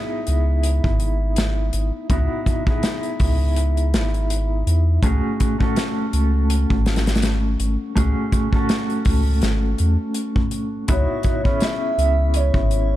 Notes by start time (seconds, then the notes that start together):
Already playing: B3 D#4 E4 G#4
0.27 C#2, closed hi-hat
0.63 closed hi-hat
0.84 G#1, kick
1.00 closed hi-hat
1.36 snare, closed hi-hat
1.73 G#1, closed hi-hat
2.10 C#2 B3 D#4 E4 F#4, kick, closed hi-hat
2.46 kick, closed hi-hat
2.67 B3 D#4 E4, kick
2.71 G#4
2.83 snare, closed hi-hat
3.03 closed hi-hat
3.20 C#2, kick, open hi-hat
3.56 closed hi-hat
3.77 closed hi-hat
3.93 G#1, snare, closed hi-hat
4.14 closed hi-hat
4.30 closed hi-hat
4.66 E2, closed hi-hat
5.03 C#2 A3 C#4 F#4 G#4, kick, closed hi-hat
5.40 kick, closed hi-hat
5.58 A3 C#4 F#4, kick
5.63 A4
5.76 snare, closed hi-hat
6.13 C#2, closed hi-hat
6.50 closed hi-hat
6.70 G#1, kick
6.86 snare, closed hi-hat
6.96 snare, closed hi-hat
7.07 snare, closed hi-hat
7.15 snare, closed hi-hat
7.22 snare, closed hi-hat
7.60 G#1, closed hi-hat
7.95 C#2 A3 C#4 F#4 G#4, kick, closed hi-hat
8.32 kick, closed hi-hat
8.52 A3 C#4 F#4 A4, kick
8.69 snare, closed hi-hat
8.90 closed hi-hat
9.05 C#2, kick, open hi-hat
9.42 G#1, snare, closed hi-hat
9.78 E2, closed hi-hat
10.14 closed hi-hat
10.36 kick
10.51 closed hi-hat
10.88 C#2 B3 D#4 E4 F#4 C#5, kick, closed hi-hat
11.23 kick, closed hi-hat
11.44 B3 C#4 E4 G#4, kick
11.60 E5, snare, closed hi-hat
11.98 C#2, closed hi-hat
12.34 C#5, closed hi-hat
12.54 G#1, kick
12.71 closed hi-hat